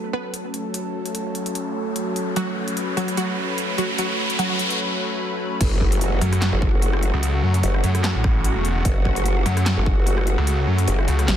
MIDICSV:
0, 0, Header, 1, 8, 480
1, 0, Start_track
1, 0, Key_signature, 3, "minor"
1, 0, Tempo, 405405
1, 879, Time_signature, 4, 2, 24, 8
1, 13460, End_track
2, 0, Start_track
2, 0, Title_t, "Synth pluck"
2, 0, Program_c, 0, 84
2, 159, Note_on_c, 0, 59, 77
2, 159, Note_on_c, 0, 71, 91
2, 792, Note_off_c, 0, 59, 0
2, 792, Note_off_c, 0, 71, 0
2, 2799, Note_on_c, 0, 54, 69
2, 2799, Note_on_c, 0, 66, 90
2, 3432, Note_off_c, 0, 54, 0
2, 3432, Note_off_c, 0, 66, 0
2, 3517, Note_on_c, 0, 54, 73
2, 3517, Note_on_c, 0, 66, 81
2, 3741, Note_off_c, 0, 54, 0
2, 3741, Note_off_c, 0, 66, 0
2, 3757, Note_on_c, 0, 54, 71
2, 3758, Note_on_c, 0, 66, 93
2, 4391, Note_off_c, 0, 54, 0
2, 4391, Note_off_c, 0, 66, 0
2, 4478, Note_on_c, 0, 54, 72
2, 4478, Note_on_c, 0, 66, 84
2, 4701, Note_off_c, 0, 54, 0
2, 4701, Note_off_c, 0, 66, 0
2, 4719, Note_on_c, 0, 54, 75
2, 4719, Note_on_c, 0, 66, 101
2, 5182, Note_off_c, 0, 54, 0
2, 5182, Note_off_c, 0, 66, 0
2, 5197, Note_on_c, 0, 54, 77
2, 5197, Note_on_c, 0, 66, 102
2, 5660, Note_off_c, 0, 54, 0
2, 5660, Note_off_c, 0, 66, 0
2, 13460, End_track
3, 0, Start_track
3, 0, Title_t, "Analog synth pad"
3, 0, Program_c, 1, 89
3, 0, Note_on_c, 1, 54, 79
3, 0, Note_on_c, 1, 57, 73
3, 0, Note_on_c, 1, 61, 74
3, 0, Note_on_c, 1, 69, 90
3, 2761, Note_off_c, 1, 69, 0
3, 2797, Note_on_c, 1, 71, 88
3, 6591, Note_off_c, 1, 61, 0
3, 6592, Note_off_c, 1, 54, 0
3, 6592, Note_off_c, 1, 57, 0
3, 6600, Note_off_c, 1, 71, 0
3, 6638, Note_on_c, 1, 49, 84
3, 6638, Note_on_c, 1, 54, 72
3, 6638, Note_on_c, 1, 57, 75
3, 6638, Note_on_c, 1, 66, 93
3, 13460, Note_off_c, 1, 49, 0
3, 13460, Note_off_c, 1, 54, 0
3, 13460, Note_off_c, 1, 57, 0
3, 13460, Note_off_c, 1, 66, 0
3, 13460, End_track
4, 0, Start_track
4, 0, Title_t, "Detuned saw bass"
4, 0, Program_c, 2, 39
4, 7357, Note_on_c, 2, 42, 96
4, 7708, Note_off_c, 2, 42, 0
4, 8449, Note_on_c, 2, 37, 96
4, 8781, Note_off_c, 2, 37, 0
4, 8798, Note_on_c, 2, 42, 97
4, 9021, Note_off_c, 2, 42, 0
4, 9278, Note_on_c, 2, 42, 93
4, 9629, Note_off_c, 2, 42, 0
4, 9650, Note_on_c, 2, 33, 98
4, 10109, Note_off_c, 2, 33, 0
4, 10129, Note_on_c, 2, 28, 106
4, 10461, Note_off_c, 2, 28, 0
4, 11198, Note_on_c, 2, 42, 96
4, 11549, Note_off_c, 2, 42, 0
4, 12290, Note_on_c, 2, 37, 97
4, 12621, Note_off_c, 2, 37, 0
4, 12637, Note_on_c, 2, 42, 99
4, 12861, Note_off_c, 2, 42, 0
4, 13118, Note_on_c, 2, 37, 95
4, 13341, Note_off_c, 2, 37, 0
4, 13460, End_track
5, 0, Start_track
5, 0, Title_t, "Wobble bass"
5, 0, Program_c, 3, 39
5, 6638, Note_on_c, 3, 30, 96
5, 7341, Note_off_c, 3, 30, 0
5, 7730, Note_on_c, 3, 31, 94
5, 7949, Note_off_c, 3, 31, 0
5, 7970, Note_on_c, 3, 30, 94
5, 8429, Note_off_c, 3, 30, 0
5, 9039, Note_on_c, 3, 30, 104
5, 9262, Note_off_c, 3, 30, 0
5, 10479, Note_on_c, 3, 30, 97
5, 11181, Note_off_c, 3, 30, 0
5, 11571, Note_on_c, 3, 31, 95
5, 11789, Note_off_c, 3, 31, 0
5, 11811, Note_on_c, 3, 30, 94
5, 12269, Note_off_c, 3, 30, 0
5, 12879, Note_on_c, 3, 30, 103
5, 13102, Note_off_c, 3, 30, 0
5, 13359, Note_on_c, 3, 33, 102
5, 13460, Note_off_c, 3, 33, 0
5, 13460, End_track
6, 0, Start_track
6, 0, Title_t, "Impact"
6, 0, Program_c, 4, 103
6, 6638, Note_on_c, 4, 60, 76
6, 8559, Note_off_c, 4, 60, 0
6, 13460, End_track
7, 0, Start_track
7, 0, Title_t, "Riser"
7, 0, Program_c, 5, 103
7, 0, Note_on_c, 5, 60, 81
7, 5679, Note_off_c, 5, 60, 0
7, 13460, End_track
8, 0, Start_track
8, 0, Title_t, "Drums"
8, 399, Note_on_c, 9, 42, 77
8, 517, Note_off_c, 9, 42, 0
8, 638, Note_on_c, 9, 42, 55
8, 757, Note_off_c, 9, 42, 0
8, 878, Note_on_c, 9, 42, 83
8, 996, Note_off_c, 9, 42, 0
8, 1250, Note_on_c, 9, 42, 54
8, 1358, Note_off_c, 9, 42, 0
8, 1358, Note_on_c, 9, 42, 82
8, 1476, Note_off_c, 9, 42, 0
8, 1598, Note_on_c, 9, 42, 52
8, 1717, Note_off_c, 9, 42, 0
8, 1729, Note_on_c, 9, 42, 50
8, 1838, Note_off_c, 9, 42, 0
8, 1838, Note_on_c, 9, 42, 79
8, 1957, Note_off_c, 9, 42, 0
8, 2318, Note_on_c, 9, 42, 74
8, 2437, Note_off_c, 9, 42, 0
8, 2558, Note_on_c, 9, 42, 51
8, 2677, Note_off_c, 9, 42, 0
8, 2798, Note_on_c, 9, 42, 77
8, 2916, Note_off_c, 9, 42, 0
8, 3169, Note_on_c, 9, 42, 53
8, 3278, Note_off_c, 9, 42, 0
8, 3278, Note_on_c, 9, 42, 76
8, 3397, Note_off_c, 9, 42, 0
8, 3518, Note_on_c, 9, 42, 52
8, 3637, Note_off_c, 9, 42, 0
8, 3649, Note_on_c, 9, 42, 50
8, 3758, Note_off_c, 9, 42, 0
8, 3758, Note_on_c, 9, 42, 76
8, 3876, Note_off_c, 9, 42, 0
8, 4238, Note_on_c, 9, 42, 75
8, 4356, Note_off_c, 9, 42, 0
8, 4478, Note_on_c, 9, 42, 53
8, 4596, Note_off_c, 9, 42, 0
8, 4718, Note_on_c, 9, 42, 77
8, 4836, Note_off_c, 9, 42, 0
8, 5089, Note_on_c, 9, 42, 55
8, 5198, Note_off_c, 9, 42, 0
8, 5198, Note_on_c, 9, 42, 74
8, 5317, Note_off_c, 9, 42, 0
8, 5438, Note_on_c, 9, 42, 53
8, 5557, Note_off_c, 9, 42, 0
8, 5570, Note_on_c, 9, 42, 51
8, 5688, Note_off_c, 9, 42, 0
8, 6638, Note_on_c, 9, 36, 127
8, 6638, Note_on_c, 9, 42, 86
8, 6638, Note_on_c, 9, 49, 106
8, 6756, Note_off_c, 9, 36, 0
8, 6757, Note_off_c, 9, 42, 0
8, 6757, Note_off_c, 9, 49, 0
8, 6878, Note_on_c, 9, 36, 61
8, 6996, Note_off_c, 9, 36, 0
8, 7010, Note_on_c, 9, 42, 59
8, 7118, Note_off_c, 9, 42, 0
8, 7118, Note_on_c, 9, 42, 82
8, 7236, Note_off_c, 9, 42, 0
8, 7358, Note_on_c, 9, 42, 56
8, 7477, Note_off_c, 9, 42, 0
8, 7490, Note_on_c, 9, 37, 62
8, 7490, Note_on_c, 9, 42, 56
8, 7598, Note_off_c, 9, 42, 0
8, 7598, Note_on_c, 9, 38, 119
8, 7598, Note_on_c, 9, 39, 91
8, 7598, Note_on_c, 9, 42, 79
8, 7608, Note_off_c, 9, 37, 0
8, 7717, Note_off_c, 9, 38, 0
8, 7717, Note_off_c, 9, 39, 0
8, 7717, Note_off_c, 9, 42, 0
8, 7838, Note_on_c, 9, 36, 114
8, 7956, Note_off_c, 9, 36, 0
8, 8079, Note_on_c, 9, 42, 78
8, 8197, Note_off_c, 9, 42, 0
8, 8210, Note_on_c, 9, 37, 82
8, 8319, Note_on_c, 9, 42, 53
8, 8329, Note_off_c, 9, 37, 0
8, 8437, Note_off_c, 9, 42, 0
8, 8559, Note_on_c, 9, 42, 81
8, 8677, Note_off_c, 9, 42, 0
8, 8930, Note_on_c, 9, 42, 53
8, 9039, Note_off_c, 9, 42, 0
8, 9039, Note_on_c, 9, 42, 85
8, 9157, Note_off_c, 9, 42, 0
8, 9170, Note_on_c, 9, 37, 62
8, 9279, Note_on_c, 9, 42, 55
8, 9289, Note_off_c, 9, 37, 0
8, 9397, Note_off_c, 9, 42, 0
8, 9410, Note_on_c, 9, 37, 57
8, 9410, Note_on_c, 9, 42, 52
8, 9519, Note_off_c, 9, 42, 0
8, 9519, Note_on_c, 9, 38, 117
8, 9519, Note_on_c, 9, 39, 94
8, 9519, Note_on_c, 9, 42, 78
8, 9528, Note_off_c, 9, 37, 0
8, 9637, Note_off_c, 9, 38, 0
8, 9637, Note_off_c, 9, 39, 0
8, 9637, Note_off_c, 9, 42, 0
8, 9758, Note_on_c, 9, 36, 119
8, 9759, Note_on_c, 9, 37, 54
8, 9877, Note_off_c, 9, 36, 0
8, 9877, Note_off_c, 9, 37, 0
8, 9998, Note_on_c, 9, 42, 81
8, 10117, Note_off_c, 9, 42, 0
8, 10238, Note_on_c, 9, 42, 52
8, 10357, Note_off_c, 9, 42, 0
8, 10479, Note_on_c, 9, 36, 127
8, 10479, Note_on_c, 9, 42, 80
8, 10597, Note_off_c, 9, 36, 0
8, 10597, Note_off_c, 9, 42, 0
8, 10719, Note_on_c, 9, 36, 65
8, 10837, Note_off_c, 9, 36, 0
8, 10850, Note_on_c, 9, 42, 55
8, 10959, Note_off_c, 9, 42, 0
8, 10959, Note_on_c, 9, 42, 81
8, 11077, Note_off_c, 9, 42, 0
8, 11199, Note_on_c, 9, 42, 55
8, 11317, Note_off_c, 9, 42, 0
8, 11330, Note_on_c, 9, 37, 61
8, 11330, Note_on_c, 9, 42, 53
8, 11439, Note_off_c, 9, 42, 0
8, 11439, Note_on_c, 9, 38, 125
8, 11439, Note_on_c, 9, 39, 91
8, 11439, Note_on_c, 9, 42, 74
8, 11448, Note_off_c, 9, 37, 0
8, 11557, Note_off_c, 9, 38, 0
8, 11557, Note_off_c, 9, 39, 0
8, 11557, Note_off_c, 9, 42, 0
8, 11679, Note_on_c, 9, 36, 120
8, 11797, Note_off_c, 9, 36, 0
8, 11919, Note_on_c, 9, 42, 72
8, 12038, Note_off_c, 9, 42, 0
8, 12050, Note_on_c, 9, 37, 76
8, 12159, Note_on_c, 9, 42, 51
8, 12169, Note_off_c, 9, 37, 0
8, 12277, Note_off_c, 9, 42, 0
8, 12398, Note_on_c, 9, 42, 78
8, 12517, Note_off_c, 9, 42, 0
8, 12769, Note_on_c, 9, 42, 53
8, 12878, Note_off_c, 9, 42, 0
8, 12878, Note_on_c, 9, 42, 74
8, 12996, Note_off_c, 9, 42, 0
8, 13009, Note_on_c, 9, 37, 62
8, 13117, Note_on_c, 9, 42, 52
8, 13127, Note_off_c, 9, 37, 0
8, 13235, Note_off_c, 9, 42, 0
8, 13248, Note_on_c, 9, 37, 59
8, 13248, Note_on_c, 9, 42, 52
8, 13356, Note_off_c, 9, 42, 0
8, 13356, Note_on_c, 9, 38, 126
8, 13356, Note_on_c, 9, 39, 85
8, 13356, Note_on_c, 9, 42, 77
8, 13367, Note_off_c, 9, 37, 0
8, 13460, Note_off_c, 9, 38, 0
8, 13460, Note_off_c, 9, 39, 0
8, 13460, Note_off_c, 9, 42, 0
8, 13460, End_track
0, 0, End_of_file